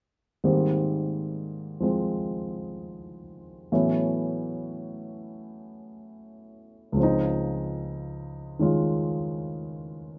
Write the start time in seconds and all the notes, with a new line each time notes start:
0.44 G#2 D#3 G3 A#3 C4
1.80 F3 G#3 C4
3.72 A2 E3 F#3 B3 C#4
6.92 C#2 C#3
6.97 F3 C4
7.03 D#4
8.59 D#3 G#3 C#4 F4